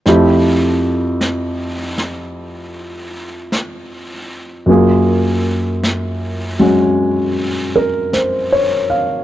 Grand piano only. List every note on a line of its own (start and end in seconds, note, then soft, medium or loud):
0.06 4.68 F2 soft
0.06 4.69 F3 soft
0.06 4.68 A3 soft
0.06 4.69 E4 soft
0.06 4.69 G4 soft
4.66 9.24 F#2 soft
4.66 6.58 F#3 soft
4.66 9.24 A#3 soft
4.66 9.24 F4 soft
4.71 9.24 G#4 soft
6.59 9.24 F#3 soft
6.59 9.24 G#3 soft
6.59 9.24 C#4 soft
6.59 9.24 F#4 soft
7.76 8.35 A#4 soft
8.14 8.85 C5 soft
8.52 9.12 C#5 soft
8.90 9.24 F5 soft